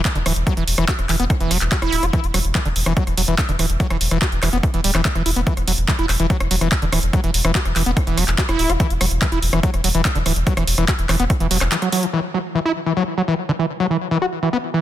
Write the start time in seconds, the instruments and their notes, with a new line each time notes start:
0.05 kick, clap, closed hi-hat
0.15 analog synth bass E1, acid bass D3, closed hi-hat
0.26 analog synth bass D1, acid bass E3, cross-stick, open hi-hat
0.36 analog synth bass E1, closed hi-hat
0.47 acid bass F#3, kick, cross-stick, closed hi-hat
0.57 analog synth bass E1, acid bass E3, closed hi-hat
0.68 analog synth bass E1, open hi-hat
0.78 analog synth bass E1, acid bass E3, cross-stick, closed hi-hat
0.88 acid bass F#4, kick, clap, closed hi-hat
0.99 analog synth bass E1, cross-stick, closed hi-hat
1.09 analog synth bass E1, acid bass E3, clap, open hi-hat
1.20 analog synth bass E1, acid bass B3, closed hi-hat
1.30 kick, cross-stick, closed hi-hat
1.40 analog synth bass E1, acid bass E3, closed hi-hat
1.51 analog synth bass E1, acid bass F#3, cross-stick, open hi-hat
1.61 analog synth bass E1, clap, closed hi-hat
1.72 acid bass F#4, kick, clap, closed hi-hat
1.82 analog synth bass E1, acid bass E4, cross-stick, closed hi-hat
1.93 analog synth bass D1, open hi-hat
2.03 analog synth bass E1, acid bass F#4, cross-stick, closed hi-hat
2.13 acid bass E3, kick, closed hi-hat
2.24 analog synth bass E1, closed hi-hat
2.34 analog synth bass E1, acid bass F#3, cross-stick, open hi-hat
2.45 analog synth bass E1, closed hi-hat
2.55 acid bass E3, kick, cross-stick, clap, closed hi-hat
2.65 analog synth bass E1, acid bass D3, closed hi-hat
2.76 analog synth bass E1, open hi-hat
2.86 analog synth bass E1, acid bass E3, cross-stick, closed hi-hat
2.97 acid bass F#3, kick, closed hi-hat
3.07 analog synth bass E1, cross-stick, closed hi-hat
3.17 analog synth bass E1, acid bass F#3, open hi-hat
3.28 analog synth bass E1, acid bass E3, closed hi-hat
3.38 kick, cross-stick, clap, closed hi-hat
3.49 analog synth bass E1, acid bass D3, closed hi-hat
3.59 analog synth bass D1, acid bass E3, cross-stick, open hi-hat
3.70 analog synth bass E1, closed hi-hat
3.80 acid bass F#3, kick, closed hi-hat
3.90 analog synth bass E1, acid bass E3, cross-stick, closed hi-hat
4.01 analog synth bass E1, open hi-hat
4.11 analog synth bass E1, acid bass E3, cross-stick, closed hi-hat
4.22 acid bass F#4, kick, clap, closed hi-hat
4.32 analog synth bass E1, closed hi-hat
4.43 analog synth bass E1, acid bass E3, cross-stick, clap, open hi-hat
4.53 analog synth bass E1, acid bass B3, closed hi-hat
4.63 kick, cross-stick, closed hi-hat
4.74 analog synth bass E1, acid bass E3, closed hi-hat
4.84 analog synth bass D1, acid bass G3, open hi-hat
4.95 analog synth bass E1, acid bass E3, cross-stick, clap, closed hi-hat
5.05 acid bass E3, kick, clap, closed hi-hat
5.15 analog synth bass E1, acid bass E3, cross-stick, closed hi-hat
5.26 analog synth bass E1, acid bass E4, open hi-hat
5.36 analog synth bass E1, acid bass B3, closed hi-hat
5.47 acid bass E3, kick, closed hi-hat
5.57 analog synth bass E1, cross-stick, closed hi-hat
5.67 analog synth bass E1, acid bass F#3, open hi-hat
5.78 analog synth bass E1, closed hi-hat
5.88 acid bass E3, kick, cross-stick, clap, closed hi-hat
5.99 analog synth bass E1, acid bass E4, closed hi-hat
6.09 analog synth bass E1, cross-stick, clap, open hi-hat
6.20 analog synth bass E1, acid bass E3, closed hi-hat
6.30 acid bass F#3, kick, closed hi-hat
6.40 analog synth bass E1, cross-stick, closed hi-hat
6.51 analog synth bass E1, acid bass F#3, open hi-hat
6.61 analog synth bass E1, acid bass E3, cross-stick, closed hi-hat
6.72 kick, clap, closed hi-hat
6.82 analog synth bass E1, acid bass D3, closed hi-hat
6.93 analog synth bass D1, acid bass E3, cross-stick, open hi-hat
7.03 analog synth bass E1, closed hi-hat
7.13 acid bass F#3, kick, cross-stick, closed hi-hat
7.24 analog synth bass E1, acid bass E3, closed hi-hat
7.34 analog synth bass E1, open hi-hat
7.45 analog synth bass E1, acid bass E3, cross-stick, closed hi-hat
7.55 acid bass F#4, kick, clap, closed hi-hat
7.65 analog synth bass E1, cross-stick, closed hi-hat
7.76 analog synth bass E1, acid bass E3, clap, open hi-hat
7.86 analog synth bass E1, acid bass B3, closed hi-hat
7.97 kick, cross-stick, closed hi-hat
8.07 analog synth bass E1, acid bass E3, closed hi-hat
8.17 analog synth bass E1, acid bass F#3, cross-stick, open hi-hat
8.28 analog synth bass E1, clap, closed hi-hat
8.38 acid bass F#4, kick, clap, closed hi-hat
8.49 analog synth bass E1, acid bass E4, cross-stick, closed hi-hat
8.59 analog synth bass D1, open hi-hat
8.70 analog synth bass E1, acid bass F#4, cross-stick, closed hi-hat
8.80 acid bass E3, kick, closed hi-hat
8.90 analog synth bass E1, closed hi-hat
9.01 analog synth bass E1, acid bass F#3, cross-stick, open hi-hat
9.11 analog synth bass E1, closed hi-hat
9.22 acid bass E3, kick, cross-stick, clap, closed hi-hat
9.32 analog synth bass E1, acid bass E4, closed hi-hat
9.42 analog synth bass E1, open hi-hat
9.53 analog synth bass E1, acid bass E3, cross-stick, closed hi-hat
9.63 acid bass F#3, kick, closed hi-hat
9.74 analog synth bass E1, cross-stick, closed hi-hat
9.84 analog synth bass E1, acid bass F#3, open hi-hat
9.95 analog synth bass E1, acid bass E3, closed hi-hat
10.05 kick, cross-stick, clap, closed hi-hat
10.15 analog synth bass E1, acid bass D3, closed hi-hat
10.26 analog synth bass D1, acid bass E3, cross-stick, open hi-hat
10.36 analog synth bass E1, closed hi-hat
10.47 acid bass F#3, kick, closed hi-hat
10.57 analog synth bass E1, acid bass E3, cross-stick, closed hi-hat
10.67 analog synth bass E1, open hi-hat
10.78 analog synth bass E1, acid bass E3, cross-stick, closed hi-hat
10.88 acid bass F#4, kick, clap, closed hi-hat
10.99 analog synth bass E1, closed hi-hat
11.09 analog synth bass E1, acid bass E3, cross-stick, clap, open hi-hat
11.20 analog synth bass E1, acid bass B3, closed hi-hat
11.30 kick, cross-stick, closed hi-hat
11.40 analog synth bass E1, acid bass E3, closed hi-hat
11.51 analog synth bass E1, acid bass F#3, open hi-hat
11.61 analog synth bass E1, cross-stick, clap
11.72 acid bass E3, clap, closed hi-hat
11.82 acid bass F#3, cross-stick, closed hi-hat
11.92 acid bass F#3, open hi-hat
12.03 acid bass E3, closed hi-hat
12.13 acid bass E3
12.34 acid bass F#3
12.55 acid bass E3
12.65 acid bass E4
12.86 acid bass E3
12.97 acid bass F#3
13.18 acid bass F#3
13.28 acid bass E3
13.49 acid bass D3
13.59 acid bass E3
13.80 acid bass F#3
13.90 acid bass E3
14.11 acid bass E3
14.22 acid bass F#4
14.43 acid bass E3
14.53 acid bass B3
14.74 acid bass E3